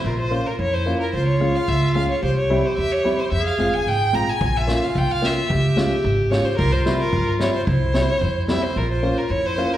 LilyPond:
<<
  \new Staff \with { instrumentName = "Violin" } { \time 2/4 \tempo 4 = 110 bes'16 c''8 bes'16 des''16 c''8 bes'16 | c''16 des''8 f''16 e''8 f''16 des''16 | c''16 des''8 c''16 e''16 des''8 c''16 | e''16 f''8 aes''16 g''8 bes''16 aes''16~ |
aes''16 e''8 f''16 g''16 f''16 e''8~ | e''4 r8 des''16 c''16 | bes'16 c''8 bes'8. des''16 c''16 | c''4. e''16 c''16 |
bes'16 c''8 bes'16 des''16 c''8 bes'16 | }
  \new Staff \with { instrumentName = "Clarinet" } { \time 2/4 f'4 e'4 | f'2 | g'2 | aes'4. r8 |
f'2 | g'2 | f'2 | e'4 e'4 |
f'4 e'4 | }
  \new Staff \with { instrumentName = "Upright piano" } { \time 2/4 r8 <bes des' f'>16 r8. <bes des' f'>16 r16 | r8 <aes des' f'>16 r8. <aes des' f'>16 r16 | r8 <g c' e'>16 r8. <g c' e'>16 r16 | r8 <aes c' f'>16 r8. <aes c' f'>16 r16 |
r8 <bes des' f'>16 r8. <bes des' f'>16 r16 | r8 <aes des' f'>16 r8. <aes des' f'>16 r16 | r8 <g c' e'>16 r8. <g c' e'>16 r16 | r8 <g c' e'>16 r8. <g c' e'>16 r16 |
r8 <bes des' f'>16 r8. <bes des' f'>16 r16 | }
  \new Staff \with { instrumentName = "Upright bass" } { \clef bass \time 2/4 bes,,4 f,4 | des,4 des,4 | c,4 e,4 | f,8 g,,8 aes,,8 bes,,8 |
bes,,4 c,4 | des,4 aes,,4 | c,4 g,4 | c,4 f,4 |
bes,,4 f,4 | }
  \new DrumStaff \with { instrumentName = "Drums" } \drummode { \time 2/4 r4 r4 | r4 r4 | r4 r4 | r4 r4 |
bd8 sn8 bd8 sn8 | bd8 sn8 bd8 sn8 | bd8 sn8 bd8 sn8 | bd8 sn8 bd8 sn8 |
r4 r4 | }
>>